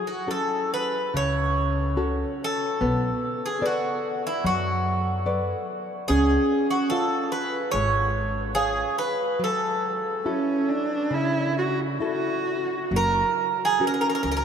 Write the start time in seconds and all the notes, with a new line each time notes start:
Already playing: F#3
0.07 F#4
0.27 C#4 F#4 A4
0.74 B4
1.14 C#2 C#3 C#5
1.97 C#4 F#4 A4
2.44 A4
2.81 B1 B3
3.46 G#4
3.61 A4 B4 D5
3.66 F#4
4.27 E4
4.44 F#2 F#3 F#4
5.26 A4 B4 D5
6.08 C#2 C#4 G#4
6.71 F#4
6.90 F4 A4 C#5 F5
7.32 B4
7.71 G#1 G#3 C#5
8.55 G#4 C#5 F5
8.98 B4
9.39 F#3
9.44 A4
10.25 C#4 E4 F#4 A4
10.69 D4
11.11 C#3 E4
11.58 F#4
12.00 E4 F#4 A4
12.91 F#1 F#3
12.96 A#4
13.65 G#4
13.80 C#4 F#4 A#4
13.87 A#4
13.94 A#4
14.01 A#4
14.10 A#4
14.15 A#4
14.23 C#2 A#4
14.32 A#4
14.37 A#4